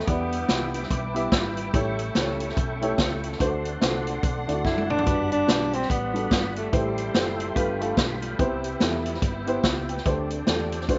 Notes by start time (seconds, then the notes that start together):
Already playing: G3 B3 G5
0.07 E2 E3 B3 D4 E4 G4 B4 D5 E5 D6, kick, closed hi-hat
0.32 closed hi-hat
0.48 C2 B3 E4 F#4 B4, snare, closed hi-hat
0.55 G4
0.74 closed hi-hat
0.83 snare
0.90 B1 D4 B4, kick, closed hi-hat
1.14 B3 E4 G4 E5, closed hi-hat
1.32 G#1 G3 E4, kick, snare, closed hi-hat
1.57 closed hi-hat
1.73 A1 A2 A3 C#4 E4 G4 A4 C#5 E5 C#6, kick, closed hi-hat
1.99 closed hi-hat
2.15 C#2 A3 E4 G4 C5, snare, closed hi-hat
2.21 C#5
2.40 closed hi-hat
2.49 snare
2.57 B1, kick, closed hi-hat
2.82 A3 E4 G4 C#5, closed hi-hat
2.98 C#2, kick, snare, closed hi-hat
3.24 closed hi-hat
3.32 snare
3.39 D2 D3 A3 C4 D4 F#4 C5 D5 F#5 C6, kick, closed hi-hat
3.65 closed hi-hat
3.81 C2 A3 D4 F#4 C5, snare, closed hi-hat
4.07 closed hi-hat
4.23 B1, kick, closed hi-hat
4.47 D2 A3 D4 E4 D5, closed hi-hat
4.53 F#4
4.65 F#1 E4, kick, snare
4.78 high tom
4.90 D4, mid tom
4.98 floor tom
5.06 G1 G2 G3 B3 D4 F#4 B4 B5, kick, closed hi-hat
5.32 D4, closed hi-hat
5.47 B1 G3 D4 F#4 B4, snare, closed hi-hat
5.73 C4, closed hi-hat
5.82 snare
5.90 A1 B3, kick, closed hi-hat
6.14 G3 D4 F#4 A4, closed hi-hat
6.31 G1, kick, snare, closed hi-hat
6.56 A3, closed hi-hat
6.72 A1 A2 G3 A3 C4 E4 G4 A4 C5 E5 G5 C6, kick, closed hi-hat
6.98 closed hi-hat
7.14 F#1 A3 E4 G4 C5, snare, closed hi-hat
7.40 closed hi-hat
7.55 G1 G2 A3 B3 F4 G4 A4 B4 F5 B5, kick, closed hi-hat
7.80 A3 F4 G4 A4, closed hi-hat
7.97 B1, kick, snare, closed hi-hat
8.22 closed hi-hat
8.39 C2 C3 B3 E4 G4 C5 E5 G5, kick, closed hi-hat
8.64 closed hi-hat
8.80 E2 B3 E4 G4 A4, snare, closed hi-hat
9.06 closed hi-hat
9.14 snare
9.22 G1, kick, closed hi-hat
9.47 B3 E4 G4 C5, closed hi-hat
9.64 C#2 G4 E5, kick, snare, closed hi-hat
9.89 B4 G5, closed hi-hat
9.97 snare
10.06 D2 D3 A3 C4 D4 G4 A4 C5 D5, kick, closed hi-hat
10.30 closed hi-hat
10.47 E2 A3 D4 G4 A4, snare, closed hi-hat
10.72 closed hi-hat
10.81 snare
10.88 D2 D3 F#3 A3 D4 F#4 C5 F#5, kick, closed hi-hat